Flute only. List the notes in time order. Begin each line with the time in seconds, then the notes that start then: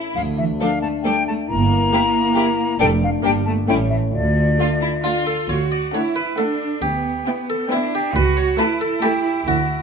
0.15 F5
0.38 E5
0.61 F5
0.82 A5
1.03 G5
1.27 A5
1.49 A#5
2.80 G5
3.04 F5
3.25 G5
3.46 A5
3.68 G5
3.90 E5
4.13 D5